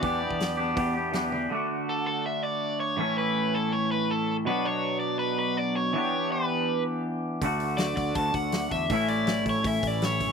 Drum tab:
HH |o---o---o---o---|----------------|----------------|----------------|
SD |----o-------o---|----------------|----------------|----------------|
T1 |--------------o-|----------------|----------------|----------------|
BD |o--o----o-------|----------------|----------------|----------------|

HH |----------------|o-o-o-o-o-o-o-o-|o-o-o-o-o-o-o-o-|
SD |----------------|----o-------o---|----o-------o---|
T1 |----------------|----------------|----------------|
BD |----------------|o-----o-o-o---o-|o-----o-o-o---o-|